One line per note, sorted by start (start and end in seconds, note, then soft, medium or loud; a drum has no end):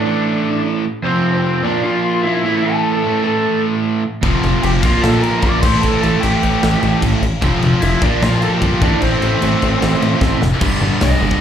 0.00 0.83 A2 medium
0.00 0.84 E3 medium
0.00 0.85 A3 medium
0.00 0.61 D4 medium
0.00 0.61 D5 medium
0.05 0.85 A2 medium
0.05 0.85 E3 medium
0.05 0.84 A3 medium
1.03 1.62 F2 medium
1.03 1.63 C3 loud
1.03 1.63 F3 loud
1.03 1.33 C4 medium
1.03 1.32 C5 medium
1.33 1.62 C4 medium
1.33 1.65 C5 medium
1.63 2.23 A#2 medium
1.63 2.23 F3 loud
1.63 2.24 A#3 loud
1.63 1.83 D4 medium
1.63 1.82 D5 medium
1.83 2.22 F4 medium
1.83 2.23 F5 medium
2.23 2.43 A#2 medium
2.23 2.44 F3 medium
2.23 2.62 E4 medium
2.23 2.61 E5 loud
2.27 2.45 A#3 medium
2.43 3.02 A2 medium
2.43 3.03 E3 medium
2.43 3.04 A3 loud
2.62 2.92 A4 medium
2.62 2.92 A5 loud
2.93 3.22 A4 medium
2.93 3.23 A5 loud
3.03 4.02 A2 medium
3.03 4.03 E3 medium
3.03 4.04 A3 medium
3.23 4.03 A2 medium
3.23 4.03 E3 medium
3.23 4.02 A3 medium
3.23 3.62 A4 medium
3.23 3.61 A5 medium
4.21 4.36 F1 medium
4.21 4.81 F2 medium
4.21 4.81 C3 loud
4.21 4.82 F3 loud
4.21 4.83 A3 loud
4.21 4.83 C4 loud
4.21 kick loud
4.21 crash medium
4.26 4.83 F4 loud
4.43 4.56 F1 medium
4.43 crash medium
4.63 4.84 F1 medium
4.63 4.69 G4 medium
4.63 4.68 G5 medium
4.63 crash medium
4.82 4.96 A#1 medium
4.82 5.41 A#2 medium
4.82 5.42 F3 medium
4.82 5.43 A#3 loud
4.82 5.63 D4 medium
4.82 5.02 F4 medium
4.82 5.63 F4 loud
4.82 5.02 F5 medium
4.82 kick loud
4.82 crash medium
5.02 5.29 A#2 medium
5.02 5.22 A4 medium
5.02 5.21 A5 medium
5.02 snare loud
5.02 crash medium
5.22 5.42 A#4 medium
5.22 5.40 A#5 medium
5.22 crash medium
5.41 5.56 A#1 medium
5.41 5.62 A#2 medium
5.41 5.63 F3 medium
5.41 5.62 D5 medium
5.41 5.61 D6 loud
5.41 kick medium
5.41 crash medium
5.46 5.64 A#3 medium
5.61 5.76 A1 medium
5.61 6.21 A2 medium
5.61 6.22 E3 medium
5.61 7.22 C4 medium
5.61 5.82 C5 medium
5.61 5.81 C6 loud
5.61 kick loud
5.61 crash loud
5.66 6.23 A3 medium
5.66 7.23 E4 medium
5.81 5.96 A1 medium
5.81 6.02 A4 medium
5.81 6.00 A5 medium
5.81 crash medium
6.01 6.16 A1 medium
6.01 6.22 A4 medium
6.01 6.20 A5 medium
6.01 crash medium
6.21 6.36 A1 medium
6.21 7.21 A2 medium
6.21 7.22 E3 medium
6.21 6.99 G4 medium
6.21 6.98 G5 medium
6.21 crash medium
6.25 7.23 A3 medium
6.42 6.56 A1 medium
6.42 7.22 A2 medium
6.42 7.22 E3 medium
6.42 7.21 A3 medium
6.42 crash medium
6.63 6.76 A1 medium
6.63 snare loud
6.63 crash medium
6.83 6.96 A1 medium
6.83 crash medium
7.02 7.15 A1 medium
7.02 kick medium
7.02 crash medium
7.22 7.35 A1 medium
7.22 crash medium
7.42 7.55 F1 loud
7.42 8.01 F2 medium
7.42 8.01 C3 loud
7.42 8.02 F3 loud
7.42 8.02 A3 medium
7.42 8.02 C4 medium
7.42 8.02 F4 medium
7.42 kick loud
7.42 crash medium
7.62 7.75 F1 medium
7.62 crash medium
7.82 7.95 F1 loud
7.82 8.01 E4 medium
7.82 8.03 E5 medium
7.82 crash medium
8.01 8.15 A#1 medium
8.01 8.59 A#2 medium
8.01 8.61 F3 medium
8.01 8.62 A#3 loud
8.01 8.21 D4 medium
8.01 8.82 D4 loud
8.01 8.82 F4 loud
8.01 8.23 D5 medium
8.01 kick loud
8.01 crash medium
8.22 8.48 A#2 medium
8.22 8.41 F4 medium
8.22 8.41 F5 medium
8.22 snare loud
8.22 crash medium
8.42 8.51 A4 medium
8.42 8.53 A5 medium
8.42 crash medium
8.52 8.80 G4 medium
8.52 8.82 G5 medium
8.60 8.75 G1 loud
8.60 8.80 A#2 medium
8.60 8.81 F3 medium
8.60 8.82 A#3 medium
8.60 kick medium
8.60 crash medium
8.81 8.94 A1 medium
8.81 9.39 A2 medium
8.81 9.41 E3 loud
8.81 9.42 A3 loud
8.81 10.41 C4 loud
8.81 9.01 D4 medium
8.81 10.41 E4 medium
8.81 9.01 D5 medium
8.81 kick loud
8.81 crash medium
9.01 9.15 A1 loud
9.01 10.38 C4 medium
9.01 10.37 C5 medium
9.01 crash medium
9.22 9.35 A1 loud
9.22 crash medium
9.40 9.55 A1 medium
9.40 10.40 A2 medium
9.40 10.41 E3 medium
9.40 10.42 A3 medium
9.40 crash medium
9.61 9.75 A1 medium
9.61 10.41 A2 medium
9.61 10.41 E3 medium
9.61 10.40 A3 medium
9.61 crash medium
9.82 9.95 A1 medium
9.82 snare medium
9.82 crash medium
10.02 10.15 A1 medium
10.02 crash medium
10.21 10.34 A1 medium
10.21 kick medium
10.21 snare medium
10.42 10.55 F1 loud
10.42 snare medium
10.61 10.74 G1 loud
10.61 10.79 G2 medium
10.61 10.79 D3 loud
10.61 10.81 G3 loud
10.61 11.21 B3 medium
10.61 11.20 D4 loud
10.61 kick loud
10.61 crash loud
10.80 10.94 G1 medium
10.80 11.00 G2 medium
10.80 11.00 D3 medium
10.80 11.02 G3 medium
11.01 11.14 C2 loud
11.01 11.21 G2 medium
11.01 11.21 D3 medium
11.01 11.22 G3 medium
11.01 11.41 D#5 medium
11.01 snare loud
11.01 open hi-hat medium
11.21 11.34 G1 medium
11.21 11.39 G2 medium
11.21 11.40 D3 loud
11.21 11.41 G3 loud
11.21 11.41 B3 medium
11.21 11.41 D4 medium
11.31 kick medium